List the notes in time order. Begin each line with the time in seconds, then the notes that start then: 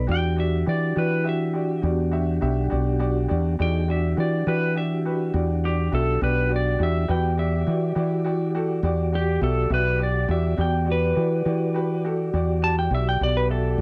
0.07 E2 D4 F#4 G4 D5
0.12 G5
0.36 F#4 G4 D5 E5
0.66 E3 F#4 G4 D5
0.96 E3 F#4 G4 B4 D5
1.24 F#4 G4 E5
1.29 E5
1.53 F#4 G4 D5
1.82 E2 F#4 G4 D5
2.11 F#4 G4 E5
2.41 B1 F#4 G4 E5
2.70 B1 F#4 G4 D5
2.99 F#4 G4 D5
3.28 E2 F#4 G4 D5
3.59 E2 D#4 F#4 G4 G#4 D5 G5
3.88 D4 F#4 G4 D5 E5
4.17 E3 F#4 G4 D5
4.47 E3 F#4 G4 B4 D5
4.75 F#4 G4 D5 E5
5.05 F#4 G4 B4
5.34 E2 F#4 G4 D5
5.64 F#4 G4 D5
5.92 B1 F#4 G4 A4 E5
6.21 B1 F#4 G4 B4 D5
6.49 F#4 G4 D5
6.56 D5
6.79 E2 F#4 G4 D5
6.83 E5
7.08 E2 F#4 G4 B4 D5 G5
7.37 F#4 G4 D5 E5
7.67 E3 F#4 G4 D5
7.95 E3 F#4 G4 D5
8.24 F#4 G4 D5
8.55 F#4 G4 A4
8.83 E2 F#4 G4 D5
9.12 F#4 G4 D5
9.41 B1 F#4 G4 A4 E5
9.70 B1 F#4 G4 B4 E5
9.98 F#4 G4 D5
10.03 D5
10.28 E2 F#4 G4 D5 E5
10.57 E2 F#4 G4 D5
10.61 G5
10.85 F#4 G4 D5
10.92 B4
11.15 E3 F#4 G4 D5
11.45 E3 F#4 G4 D5
11.74 F#4 G4 B4
12.04 F#4 G4 A4
12.33 E2 F#4 G4 D5
12.62 F#4 G4 D5 A5
12.79 G5
12.91 B1 F#4 G4 D5 E5
13.09 G5
13.21 B1 F#4 G4 D5
13.37 B4
13.49 F#4 G4 A4 E5
13.78 E2